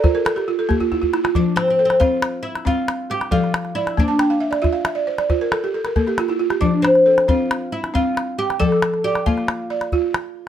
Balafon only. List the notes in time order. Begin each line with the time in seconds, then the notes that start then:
Already playing: D5
0.04 F4 C5
0.15 A#4
0.25 A4
0.36 G4
0.48 F4
0.59 A4
0.69 A#3 G4
0.80 F4
0.92 E4
1.01 F4
1.13 E4
1.24 F4
1.35 F3
1.79 A4
2.00 C4
2.65 C4
3.10 G4
3.31 F3 A4
3.76 D5
3.97 A#3
4.08 A5
4.19 G5
4.30 F5
4.40 E5
4.51 D5
4.62 F4 E5
4.73 F5
4.85 E5
4.95 D5
5.07 C5
5.18 D5
5.30 F4 C5
5.41 A#4
5.52 A4
5.64 G4
5.74 A4
5.85 A#4
5.96 A#3 A4
6.07 G4
6.19 F4
6.29 E4
6.39 F4
6.50 G4
6.61 F3
7.06 A4
7.28 C4
7.94 C4
8.38 G4
8.60 F3 A4
9.05 D5
9.27 A#3
9.70 D5
9.93 F4